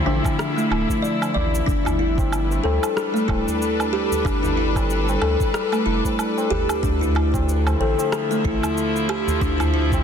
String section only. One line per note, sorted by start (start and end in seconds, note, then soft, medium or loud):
0.00 1.67 D3 medium
0.00 3.36 F3 medium
0.00 1.67 A3 medium
0.00 2.83 E4 medium
1.67 6.83 G3 medium
1.87 7.69 D4 medium
2.35 8.53 B4 medium
2.90 8.92 A4 medium
6.83 10.04 D3 medium
7.05 10.04 A3 medium
7.60 10.04 E4 medium
7.66 10.04 F3 medium